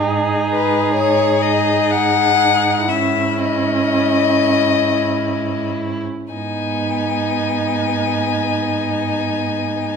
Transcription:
Already playing: viola D#4
0.05 cello G#2, violin G#4
0.50 violin B4
0.94 violin C#5
1.42 violin D#5
1.91 violin F#5
2.88 viola C#4, violin E4 E5
3.40 violin D#5
6.33 cello G#2, viola B3, violin D#4 G#5

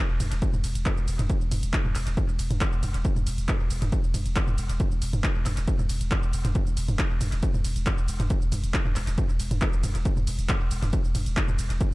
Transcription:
0.10 sub bass E1
0.20 sub bass E1, mid tom, open hi-hat, ride, shaker
0.32 sub bass E1, closed hi-hat, shaker
0.42 kick, closed hi-hat, shaker
0.53 sub bass E1, mid tom, shaker
0.64 sub bass E1, open hi-hat, ride, shaker
0.75 sub bass E1, closed hi-hat, shaker
0.86 kick, clap, closed hi-hat, mid tom, shaker
0.97 sub bass E1, shaker
1.08 sub bass E1, open hi-hat, ride, shaker
1.19 sub bass E1, closed hi-hat, mid tom, shaker
1.30 kick, closed hi-hat, shaker
1.41 sub bass E1, shaker
1.52 sub bass E1, mid tom, open hi-hat, ride, shaker
1.63 sub bass E1, closed hi-hat, shaker
1.73 kick, clap, closed hi-hat, shaker
1.85 sub bass E1, mid tom
1.95 sub bass E1, clap, open hi-hat, ride, shaker
2.07 sub bass E1, closed hi-hat, shaker
2.17 kick, closed hi-hat, mid tom, shaker
2.29 sub bass E1, shaker
2.39 sub bass E1, open hi-hat, ride, shaker
2.51 sub bass E1, closed hi-hat, mid tom, shaker
2.61 kick, clap, closed hi-hat, shaker
2.72 sub bass E1, shaker
2.83 sub bass E1, mid tom, open hi-hat, ride, shaker
2.94 sub bass E1, closed hi-hat, shaker
3.05 kick, closed hi-hat, shaker
3.16 sub bass E1, mid tom, shaker
3.27 sub bass E1, open hi-hat, ride, shaker
3.38 sub bass E1, closed hi-hat, shaker
3.49 kick, clap, closed hi-hat, mid tom, shaker
3.60 sub bass E1
3.70 sub bass E1, open hi-hat, ride, shaker
3.82 sub bass E1, closed hi-hat, mid tom, shaker
3.92 kick, closed hi-hat, shaker
4.04 sub bass E1, shaker
4.14 sub bass E1, mid tom, open hi-hat, ride, shaker
4.26 sub bass E1, closed hi-hat, shaker
4.36 kick, clap, closed hi-hat, shaker
4.48 sub bass E1, mid tom, shaker
4.58 sub bass E1, open hi-hat, ride, shaker
4.70 sub bass E1, closed hi-hat, shaker
4.80 kick, closed hi-hat, mid tom, shaker
4.91 sub bass E1, shaker
5.02 sub bass E1, open hi-hat, ride, shaker
5.13 sub bass E1, closed hi-hat, mid tom, shaker
5.24 kick, clap, closed hi-hat, shaker
5.35 sub bass E1
5.46 sub bass E1, clap, mid tom, open hi-hat, ride, shaker
5.57 sub bass E1, closed hi-hat, shaker
5.68 kick, closed hi-hat, shaker
5.79 sub bass E1, mid tom, shaker
5.89 sub bass E1, open hi-hat, ride, shaker
6.01 sub bass E1, closed hi-hat, shaker
6.11 kick, clap, closed hi-hat, mid tom, shaker
6.23 sub bass E1, shaker
6.33 sub bass E1, open hi-hat, ride, shaker
6.45 sub bass E1, closed hi-hat, mid tom, shaker
6.55 kick, closed hi-hat, mid tom, shaker
6.67 sub bass E1, shaker
6.77 sub bass E1, open hi-hat, ride, shaker
6.88 sub bass E1, closed hi-hat, mid tom, shaker
6.99 kick, clap, closed hi-hat, shaker
7.10 sub bass E1
7.21 sub bass E1, mid tom, open hi-hat, ride, shaker
7.32 sub bass E1, closed hi-hat, shaker
7.43 kick, closed hi-hat, shaker
7.54 sub bass E1, mid tom, shaker
7.65 sub bass E1, open hi-hat, ride, shaker
7.76 sub bass E1, closed hi-hat, shaker
7.86 kick, clap, closed hi-hat, mid tom, shaker
7.98 sub bass E1, shaker
8.08 sub bass E1, open hi-hat, ride, shaker
8.20 sub bass E1, closed hi-hat, mid tom, shaker
8.30 kick, closed hi-hat, shaker
8.42 sub bass E1, shaker
8.52 sub bass E1, mid tom, open hi-hat, ride, shaker
8.64 sub bass E1, closed hi-hat, shaker
8.74 kick, clap, closed hi-hat, shaker
8.85 sub bass E1, mid tom
8.96 sub bass E1, clap, open hi-hat, ride, shaker
9.07 sub bass E1, closed hi-hat, shaker
9.18 kick, closed hi-hat, mid tom, shaker
9.29 sub bass E1, shaker
9.40 sub bass E1, open hi-hat, ride, shaker
9.51 sub bass E1, closed hi-hat, mid tom, shaker
9.62 kick, clap, closed hi-hat, shaker
9.73 sub bass E1, shaker
9.83 sub bass E1, mid tom, open hi-hat, ride, shaker
9.95 sub bass E1, closed hi-hat, shaker
10.05 kick, closed hi-hat, shaker
10.17 sub bass E1, mid tom, shaker
10.27 sub bass E1, open hi-hat, ride, shaker
10.39 sub bass E1, closed hi-hat, shaker
10.49 kick, clap, closed hi-hat, mid tom, shaker
10.61 sub bass E1
10.71 sub bass E1, open hi-hat, ride, shaker
10.82 sub bass E1, closed hi-hat, mid tom, shaker
10.93 kick, closed hi-hat, shaker
11.04 sub bass E1, shaker
11.15 sub bass E1, mid tom, open hi-hat, ride, shaker
11.26 sub bass E1, closed hi-hat, shaker
11.37 kick, clap, closed hi-hat, shaker
11.48 sub bass E1, mid tom, shaker
11.59 sub bass E1, open hi-hat, ride, shaker
11.70 sub bass E1, closed hi-hat, shaker
11.81 kick, closed hi-hat, mid tom, shaker

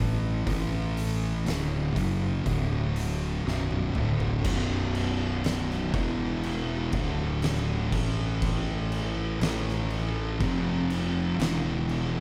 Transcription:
Already playing: fingered electric bass A1, distorted electric guitar A2 E3 A3
0.46 fingered electric bass A1, distorted electric guitar A2 E3 A3, kick, open hi-hat
0.97 open hi-hat
1.45 fingered electric bass D1, distorted electric guitar D2 A2 D3, snare, open hi-hat
1.95 fingered electric bass F#1, distorted electric guitar F#2 C#3 F#3, kick, open hi-hat
2.44 fingered electric bass D1, distorted electric guitar D2 A2 D3, kick, open hi-hat
2.96 open hi-hat
3.44 fingered electric bass B0, distorted electric guitar B1 F#2 B2, snare
3.71 high tom
3.95 fingered electric bass D1, distorted electric guitar D2 A2 D3, mid tom
4.20 floor tom
4.44 fingered electric bass B0, distorted electric guitar B1 F#2 B2, kick, crash
4.95 crash
5.44 snare, crash
5.71 snare
5.93 fingered electric bass E1, distorted electric guitar E2 B2 E3, kick, crash
6.43 crash
6.92 fingered electric bass D1, distorted electric guitar D2 A2 D3, kick, crash
7.42 snare, crash
7.92 fingered electric bass A1, distorted electric guitar A2 E3 A3, kick, crash
8.42 kick, crash
8.92 crash
9.40 fingered electric bass A1, distorted electric guitar A2 E3 A3, snare, crash
9.69 snare
9.90 crash
10.40 fingered electric bass F1, distorted electric guitar F2 C3 F3, kick, crash
10.90 crash
11.38 fingered electric bass E1, distorted electric guitar E2 B2 E3, snare, crash
11.89 crash

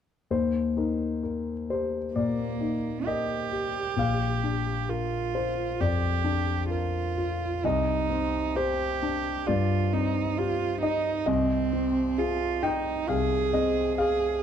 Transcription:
0.31 grand piano D#2 C5
0.77 grand piano D#4 A#4
1.23 grand piano A#4
1.70 grand piano G4 C5
2.14 grand piano A#2 D5, cello A#3
2.61 grand piano D#4
3.06 cello G4, grand piano A#4 D#5
3.52 grand piano G4
3.97 grand piano A#1 F5
4.44 grand piano D4
4.89 cello F4, grand piano A#4
5.34 grand piano F4 C5
5.80 grand piano F2 D5, cello G4
6.24 grand piano D4
6.71 cello F4, grand piano A#4
7.17 grand piano F4
7.64 grand piano C2 D#5, cello D#4
8.10 grand piano C4
8.56 grand piano G4 C5, cello G4
9.03 grand piano D4
9.47 grand piano G2 D5, cello F4
9.94 grand piano C4, cello D#4
10.38 cello F4, grand piano G4
10.82 cello D#4, grand piano D#4 D#5
11.26 grand piano C2 D#5, cello C4
11.73 grand piano C4
12.18 cello F4, grand piano G#4
12.63 cello D#4, grand piano D#4 G5
13.08 grand piano C2 F5, cello G#4
13.53 grand piano C4 D#5
13.98 cello G#4, grand piano G#4 F5

